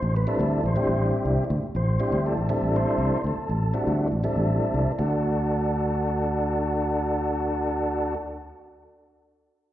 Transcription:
Already playing: tonewheel organ C5
0.02 fingered electric bass A1
0.16 tonewheel organ B4
0.27 tonewheel organ G3 C4 D4 E4 A4
0.39 fingered electric bass D2, tonewheel organ A4
0.64 fingered electric bass A1, tonewheel organ C5
0.76 tonewheel organ G3 C4 D4 E4 G4, muted fingered electric bass stroke
0.88 fingered electric bass A1
1.25 fingered electric bass C2
1.38 muted fingered electric bass stroke
1.50 fingered electric bass D2
1.63 muted fingered electric bass stroke
1.75 fingered electric bass A1, tonewheel organ C5
2.00 tonewheel organ G3 C4 D4 E4 G4
2.12 fingered electric bass D2
2.26 tonewheel organ A4
2.37 fingered electric bass A1
2.49 tonewheel organ G3 C4 D4 E4 A4, muted fingered electric bass stroke
2.62 fingered electric bass A1
2.76 tonewheel organ C5
2.98 fingered electric bass C2
3.11 muted fingered electric bass stroke
3.24 fingered electric bass D2, tonewheel organ A4
3.37 muted fingered electric bass stroke
3.49 fingered electric bass A1
3.74 tonewheel organ G3 C4 D4 E4 F#4
3.87 fingered electric bass D2
4.12 fingered electric bass A1
4.24 tonewheel organ G3 C4 D4 E4 A4, muted fingered electric bass stroke
4.36 fingered electric bass A1
4.74 fingered electric bass C2
4.87 muted fingered electric bass stroke
4.99 fingered electric bass D2, tonewheel organ D4 F#4 A4

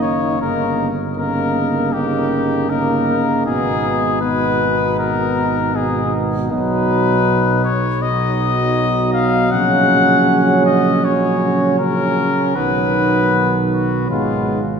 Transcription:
Already playing: tuba F#1, euphonium D#3, french horn A#3, flugelhorn D#4
0.02 trumpet C#5
0.40 tuba G1, euphonium C#3, french horn A#3, flugelhorn D#4, trumpet A#4
1.16 euphonium C#3, french horn A#3, flugelhorn D#4, trumpet A#4
1.93 euphonium C#3, french horn A#3, flugelhorn D#4, trumpet G4
2.70 euphonium C#3, french horn A#3, flugelhorn D#4, trumpet A#4
3.46 tuba G#1, euphonium B2, french horn B3, flugelhorn D#4, trumpet G#4
4.21 euphonium B2, french horn B3, flugelhorn D#4, trumpet B4
4.99 trumpet A#4
5.75 euphonium B2, french horn B3, flugelhorn D#4, trumpet G#4
6.51 tuba B1, euphonium B2, french horn F#3, flugelhorn D#4, trumpet B4
7.64 trumpet C#5
8.01 euphonium B2, french horn F#3, flugelhorn D#4, trumpet D#5
9.13 trumpet F5
9.51 tuba A#1, euphonium C#3, french horn F#3, flugelhorn C#4, trumpet F#5
10.66 trumpet D#5
11.04 euphonium C#3, french horn F#3, flugelhorn C#4, trumpet C#5
11.78 euphonium C#3, french horn F#3, flugelhorn C#4, trumpet A#4
12.56 tuba B1, euphonium D#3, french horn F#3, flugelhorn B3, trumpet B4
13.71 trumpet F#4
14.10 tuba G#1, euphonium D#3, french horn G#3, flugelhorn B3, trumpet F4

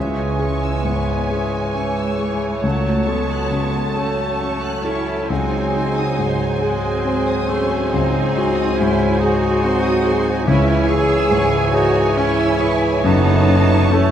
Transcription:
Already playing: double bass section C#2, grand piano C#2, timpani C#3, french horn section E3 G#4, bassoon E3, cor anglais G#3, cello section C#4, viola section C#5, clarinet C#5, violin section E5 G#5, flute section G#5
0.19 violin section G#5
0.39 grand piano G#4, violin section C#6
0.64 violin section E6
0.84 grand piano G#2, cor anglais G#3, cello section B3, violin section C#6
1.07 violin section G#5
1.30 cor anglais G#3, cello section C#4, grand piano G#4, violin section E5
1.51 violin section G#5
1.75 cor anglais E3, cello section G#3, grand piano C#4, violin section C#6
1.97 violin section E6
2.19 grand piano G#4, violin section C#6
2.42 violin section G#5
2.63 grand piano C#2, double bass section C#2, bassoon F#3, cor anglais F#3, french horn section F#3 A4, cello section A3, violin section F#5 A5, flute section A5
2.85 violin section A5
3.07 cor anglais G#3, cello section B3, grand piano A4, violin section C#6
3.31 violin section F#6
3.51 grand piano C#3, violin section C#6
3.75 violin section A5
3.96 cor anglais A3, cello section C#4, grand piano A4, violin section F#5
4.19 violin section A5
4.40 grand piano C#4, violin section C#6
4.63 violin section F#6
4.85 cor anglais C#4, cello section E4, grand piano A4, violin section C#6
5.08 violin section A5
5.29 double bass section C#2, grand piano C#2, bassoon F#3, french horn section F#3 G#4, cor anglais C4, cello section D#4, viola section C5, violin section F#5 G#5, flute section G#5
5.52 violin section G#5
5.73 grand piano G#4, violin section C6
5.96 violin section D#6
6.18 grand piano G#2, violin section C6
6.41 violin section G#5
6.61 cor anglais G#3, cello section C4, grand piano G#4, clarinet C5, violin section F#5
6.86 violin section G#5
7.05 grand piano C4, violin section C6
7.28 violin section D#6
7.49 cor anglais A3, cello section C#4, grand piano G#4, violin section C6
7.71 violin section G#5
7.92 double bass section C#2, grand piano C#2, cor anglais C4, cello section D#4, violin section F#5
8.15 violin section G#5
8.36 grand piano F#4, violin section C6
8.57 violin section D#6
8.77 grand piano G#2, cor anglais C#4, cello section E4, violin section C6
8.99 violin section G#5
9.20 cor anglais D#4, cello section F#4, grand piano G#4, violin section F#5
9.42 violin section G#5
9.63 grand piano C4, violin section C6
9.83 violin section D#6
10.05 grand piano G#4, violin section C6
10.26 violin section G#5
10.47 double bass section C#2, grand piano C#2, timpani C#3, french horn section E3 G#4, bassoon E3, cor anglais C#4, cello section E4, viola section C#5, clarinet C#5, violin section E5 G#5, flute section G#5
10.68 violin section G#5
10.89 cor anglais E4, cello section G#4, grand piano G#4, violin section C#6
11.11 violin section E6
11.31 grand piano G#2, violin section C#6
11.52 violin section G#5
11.74 cor anglais D#4, cello section F#4, grand piano G#4, violin section E5
11.95 violin section G#5
12.17 grand piano C#4, cor anglais C#4, cello section E4, violin section C#6
12.38 violin section E6
12.59 grand piano G#4, violin section C#6
12.82 violin section G#5
13.03 double bass section F#1, grand piano F#2, cor anglais B3, cello section D#4, french horn section A4, violin section E5 A5, flute section A5
13.25 violin section F#5
13.48 grand piano C#4, violin section A5
13.70 violin section C#6
13.93 cor anglais A3, cello section C#4, grand piano E4 A4, violin section A5

